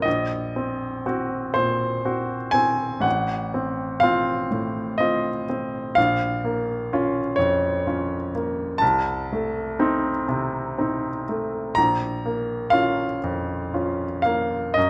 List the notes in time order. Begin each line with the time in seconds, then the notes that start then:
0.02 A#1 D#5
0.56 C4
1.06 C4 F#4
1.54 A#2 C5
2.05 C4 F#4
2.51 C4 G#5
3.00 A1 F#5
3.54 C4
4.00 C4 F4 F5
4.51 A2
4.98 C4 F4 D#5
5.50 C4
5.95 A#1 F5
6.45 A#3
6.93 C#4 F4
7.36 F2 C#5
7.87 C#4 F4
8.35 A#3
8.78 C2 A5
9.33 A3
9.79 C4 D#4
10.28 C3
10.78 C4 D#4
11.29 A3
11.75 A#1 A#5
12.26 A#3
12.70 C#4 F4 F5
13.24 F2
13.74 C#4 F4
14.22 A#3 F5
14.74 F#2 D#5